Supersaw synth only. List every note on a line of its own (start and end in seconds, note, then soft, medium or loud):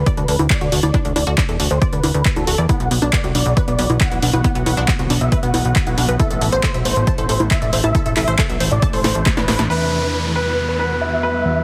0.17 0.41 B4 medium
0.50 0.74 D5 medium
0.83 1.07 D5 medium
1.16 1.40 D5 medium
1.71 1.87 C5 medium
1.93 2.24 B4 medium
2.36 2.60 A4 medium
2.69 2.93 F#5 loud
3.02 3.26 D5 loud
3.35 3.59 D5 medium
3.68 3.92 D5 medium
4.01 4.24 F#5 medium
4.33 4.57 F#5 loud
4.66 4.90 F#5 medium
5.21 5.37 E5 medium
5.43 5.75 F#5 loud
5.87 6.11 F#5 loud
6.20 6.43 E5 loud
6.52 6.76 C5 loud
6.85 7.09 C5 medium
7.18 7.42 C5 medium
7.51 7.75 E5 loud
7.84 8.08 E5 loud
8.17 8.41 E5 medium
8.72 8.87 D5 medium
8.93 9.25 C5 loud
9.37 9.61 B4 loud
9.70 9.94 E5 loud
10.03 10.27 B4 medium
10.36 10.59 B4 medium
10.69 10.92 B4 medium
11.01 11.25 E5 medium
11.34 11.58 E5 medium